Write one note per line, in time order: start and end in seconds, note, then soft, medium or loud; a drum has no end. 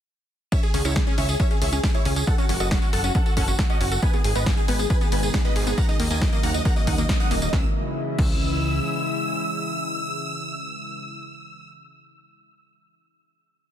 0.52 0.63 C#4 medium
0.52 0.60 C#5 medium
0.52 0.60 E5 medium
0.52 kick loud
0.52 closed hi-hat medium
0.52 tambourine medium
0.63 0.71 G#4 medium
0.63 closed hi-hat soft
0.63 tambourine soft
0.74 0.83 C#2 loud
0.74 0.84 C#4 loud
0.74 0.82 G#4 medium
0.74 open hi-hat loud
0.85 1.03 C#2 medium
0.85 0.95 C#4 medium
0.85 0.93 E4 medium
0.85 0.93 C#5 loud
0.85 closed hi-hat medium
0.85 tambourine medium
0.96 1.04 G#4 medium
0.96 1.03 G#4 medium
0.96 kick loud
0.96 snare loud
0.96 closed hi-hat medium
1.07 1.17 C#4 loud
1.07 1.15 G#4 medium
1.07 closed hi-hat soft
1.07 tambourine soft
1.18 1.36 C#2 medium
1.18 1.28 C#4 medium
1.18 1.26 C#5 medium
1.18 1.26 E5 loud
1.18 open hi-hat medium
1.29 1.37 G#4 medium
1.29 1.36 G#4 medium
1.29 closed hi-hat medium
1.29 tambourine medium
1.40 1.50 C#4 loud
1.40 1.48 C#5 medium
1.40 1.48 E5 medium
1.40 kick loud
1.40 closed hi-hat medium
1.40 tambourine medium
1.51 1.61 C#4 medium
1.51 1.59 G#4 medium
1.51 closed hi-hat soft
1.51 tambourine soft
1.62 1.79 C#2 medium
1.62 1.69 G#4 medium
1.62 1.69 C#5 medium
1.62 1.69 E5 medium
1.62 open hi-hat loud
1.73 1.82 C#4 loud
1.73 1.80 G#4 medium
1.73 closed hi-hat medium
1.73 tambourine medium
1.83 1.94 C#4 medium
1.83 1.91 G#4 medium
1.83 kick loud
1.83 snare loud
1.83 closed hi-hat medium
1.83 tambourine medium
1.94 2.02 E4 medium
1.94 2.02 G#4 medium
1.94 2.02 C#5 medium
1.94 closed hi-hat soft
1.94 tambourine soft
2.05 2.23 C#2 medium
2.05 2.15 C#4 loud
2.05 2.13 G#4 medium
2.05 open hi-hat medium
2.16 2.27 C#4 medium
2.16 2.24 G#4 medium
2.16 closed hi-hat medium
2.16 tambourine medium
2.27 2.35 A4 medium
2.27 2.35 F#5 loud
2.27 kick loud
2.27 closed hi-hat medium
2.38 2.48 C#4 loud
2.38 2.46 F#4 medium
2.38 closed hi-hat soft
2.38 tambourine soft
2.49 2.58 F#1 loud
2.49 2.60 C#4 medium
2.49 2.57 F#4 medium
2.49 open hi-hat loud
2.60 2.78 F#1 medium
2.60 2.68 F#4 medium
2.60 2.68 A4 medium
2.60 2.68 D#5 medium
2.60 closed hi-hat medium
2.60 tambourine medium
2.71 2.81 C#4 loud
2.71 2.79 F#4 medium
2.71 kick loud
2.71 snare loud
2.71 closed hi-hat medium
2.82 2.92 C#4 medium
2.82 2.90 F#4 medium
2.82 closed hi-hat soft
2.82 tambourine soft
2.93 3.11 F#1 medium
2.93 3.01 A4 medium
2.93 3.00 A4 medium
2.93 3.01 F#5 medium
2.93 open hi-hat loud
3.04 3.14 C#4 loud
3.04 3.12 F#4 medium
3.04 closed hi-hat medium
3.04 tambourine medium
3.15 3.25 C#4 medium
3.15 3.23 A4 medium
3.15 3.23 F#5 medium
3.15 kick loud
3.15 closed hi-hat medium
3.15 tambourine soft
3.26 3.34 F#4 medium
3.26 3.33 A4 medium
3.26 closed hi-hat soft
3.26 tambourine soft
3.37 3.55 F#1 medium
3.37 3.47 C#4 loud
3.37 3.45 A4 medium
3.37 3.45 F#5 medium
3.37 kick medium
3.37 open hi-hat loud
3.48 3.58 C#4 medium
3.48 3.56 F#4 medium
3.48 closed hi-hat medium
3.48 tambourine medium
3.59 3.67 F#4 medium
3.59 3.66 A4 medium
3.59 kick loud
3.59 snare loud
3.59 closed hi-hat medium
3.59 tambourine soft
3.70 3.79 C#4 loud
3.70 3.77 F#4 medium
3.70 3.78 D#5 medium
3.70 closed hi-hat soft
3.70 tambourine soft
3.81 3.98 F#1 medium
3.81 3.91 C#4 medium
3.81 3.88 F#4 medium
3.81 open hi-hat loud
3.91 3.99 F#4 medium
3.91 3.99 A4 medium
3.91 closed hi-hat medium
3.91 tambourine medium
4.02 4.18 B2 medium
4.02 4.18 D#3 medium
4.02 4.18 G#3 medium
4.02 4.12 B3 loud
4.02 4.18 D#4 medium
4.02 4.10 B4 medium
4.02 4.10 G#5 medium
4.02 kick loud
4.02 closed hi-hat medium
4.02 tambourine medium
4.13 4.24 B3 medium
4.13 4.21 G#4 medium
4.13 closed hi-hat soft
4.13 tambourine soft
4.24 4.33 G#1 medium
4.24 4.32 G#4 medium
4.24 open hi-hat loud
4.35 4.53 G#1 medium
4.35 4.45 B3 loud
4.35 4.43 B4 medium
4.35 4.43 D#5 loud
4.35 tambourine medium
4.46 4.62 B2 medium
4.46 4.62 D#3 medium
4.46 4.62 G#3 medium
4.46 4.57 B3 medium
4.46 4.62 D#4 loud
4.46 4.54 G#4 medium
4.46 kick loud
4.46 snare loud
4.46 closed hi-hat medium
4.57 4.65 G#4 medium
4.57 closed hi-hat soft
4.57 tambourine soft
4.68 4.86 G#1 medium
4.68 4.78 B3 loud
4.68 4.76 B4 medium
4.68 4.76 G#5 medium
4.68 open hi-hat loud
4.79 4.94 B2 medium
4.79 4.94 D#3 medium
4.79 4.94 G#3 medium
4.79 4.90 B3 medium
4.79 4.94 D#4 medium
4.79 4.87 G#4 medium
4.79 closed hi-hat medium
4.79 tambourine medium
4.90 4.98 G#4 medium
4.90 4.98 B4 medium
4.90 4.98 G#5 medium
4.90 kick loud
4.90 closed hi-hat soft
5.01 5.16 B2 medium
5.01 5.16 D#3 medium
5.01 5.16 G#3 medium
5.01 5.11 B3 loud
5.01 5.16 D#4 medium
5.01 5.09 G#4 medium
5.01 closed hi-hat soft
5.01 tambourine soft
5.12 5.30 G#1 medium
5.12 5.22 B3 medium
5.12 5.20 B4 medium
5.12 5.20 G#5 medium
5.12 open hi-hat loud
5.23 5.31 B2 medium
5.23 5.31 D#3 medium
5.23 5.31 G#3 medium
5.23 5.31 D#4 medium
5.23 5.30 G#4 medium
5.23 5.31 G#4 medium
5.23 closed hi-hat medium
5.23 tambourine medium
5.34 5.42 B2 medium
5.34 5.42 D#3 medium
5.34 5.42 G#3 medium
5.34 5.44 B3 loud
5.34 5.42 D#4 medium
5.34 5.42 G#4 medium
5.34 kick loud
5.34 snare loud
5.34 closed hi-hat medium
5.45 5.60 B2 medium
5.45 5.60 D#3 medium
5.45 5.60 G#3 medium
5.45 5.55 B3 medium
5.45 5.60 D#4 medium
5.45 5.53 B4 medium
5.45 5.53 D#5 medium
5.45 closed hi-hat soft
5.45 tambourine soft
5.56 5.74 G#1 loud
5.56 5.64 G#4 medium
5.56 5.63 G#4 medium
5.56 open hi-hat loud
5.67 5.74 B2 medium
5.67 5.74 D#3 medium
5.67 5.74 G#3 loud
5.67 5.77 B3 loud
5.67 5.74 D#4 medium
5.67 5.75 G#4 medium
5.67 closed hi-hat medium
5.67 tambourine medium
5.78 5.93 C#3 medium
5.78 5.93 F#3 medium
5.78 5.93 A#3 medium
5.78 5.88 A#3 medium
5.78 5.93 D#4 medium
5.78 5.86 F#5 medium
5.78 5.86 A#5 loud
5.78 kick loud
5.78 closed hi-hat soft
5.78 tambourine medium
5.89 5.96 D#4 medium
5.89 5.97 D#5 medium
5.89 closed hi-hat soft
5.89 tambourine soft
6.00 6.08 D#2 loud
6.00 6.09 A#3 loud
6.00 6.07 D#5 medium
6.00 open hi-hat loud
6.11 6.28 D#2 loud
6.11 6.21 A#3 medium
6.11 6.18 D#5 medium
6.11 6.18 G#5 loud
6.11 closed hi-hat medium
6.11 tambourine medium
6.21 6.37 C#3 loud
6.21 6.37 F#3 loud
6.21 6.37 A#3 medium
6.21 6.37 D#4 loud
6.21 6.29 D#4 medium
6.21 6.29 D#5 medium
6.21 kick loud
6.21 snare loud
6.21 closed hi-hat soft
6.32 6.42 A#3 loud
6.32 6.40 D#5 medium
6.32 closed hi-hat soft
6.32 tambourine soft
6.43 6.61 D#2 medium
6.43 6.54 A#3 medium
6.43 6.51 F#5 medium
6.43 6.51 A#5 medium
6.43 open hi-hat loud
6.54 6.70 C#3 medium
6.54 6.70 F#3 medium
6.54 6.70 A#3 medium
6.54 6.70 D#4 medium
6.54 6.62 D#4 medium
6.54 6.62 D#5 medium
6.54 closed hi-hat medium
6.54 tambourine medium
6.65 6.75 A#3 loud
6.65 6.73 F#5 medium
6.65 6.73 A#5 medium
6.65 kick loud
6.65 closed hi-hat soft
6.65 tambourine soft
6.76 6.92 C#3 medium
6.76 6.92 F#3 medium
6.76 6.92 A#3 loud
6.76 6.87 A#3 medium
6.76 6.92 D#4 medium
6.76 6.84 D#5 medium
6.76 closed hi-hat soft
6.76 tambourine soft
6.87 7.05 D#2 loud
6.87 6.95 D#4 medium
6.87 6.95 F#5 medium
6.87 6.95 D#6 medium
6.87 kick medium
6.87 open hi-hat loud
6.98 7.06 C#3 medium
6.98 7.06 F#3 medium
6.98 7.06 A#3 medium
6.98 7.08 A#3 loud
6.98 7.06 D#4 medium
6.98 7.06 D#5 medium
6.98 closed hi-hat medium
6.98 tambourine medium
7.09 7.17 C#3 medium
7.09 7.17 F#3 medium
7.09 7.17 A#3 medium
7.09 7.20 A#3 medium
7.09 7.17 D#4 medium
7.09 7.17 D#5 medium
7.09 kick loud
7.09 snare loud
7.09 closed hi-hat medium
7.09 tambourine medium
7.20 7.35 C#3 medium
7.20 7.35 F#3 loud
7.20 7.35 A#3 medium
7.20 7.35 D#4 medium
7.20 7.27 D#4 medium
7.20 7.28 F#5 medium
7.20 7.28 D#6 medium
7.20 closed hi-hat soft
7.20 tambourine soft
7.31 7.49 D#1 loud
7.31 7.41 A#3 loud
7.31 7.39 D#5 medium
7.31 open hi-hat medium
7.42 7.50 C#3 medium
7.42 7.50 F#3 medium
7.42 7.50 A#3 medium
7.42 7.52 A#3 medium
7.42 7.50 D#4 medium
7.42 7.50 D#5 medium
7.42 closed hi-hat medium
7.42 tambourine medium
7.53 7.65 C#2 loud
7.53 11.04 C#3 medium
7.53 11.04 E3 medium
7.53 11.04 G#3 medium
7.53 7.65 C#4 medium
7.53 11.04 E4 medium
7.53 7.65 E6 medium
7.53 kick loud
7.53 snare medium
8.19 8.80 C#2 loud
8.19 8.31 C#4 medium
8.19 11.69 E6 loud
8.19 kick loud
8.19 crash medium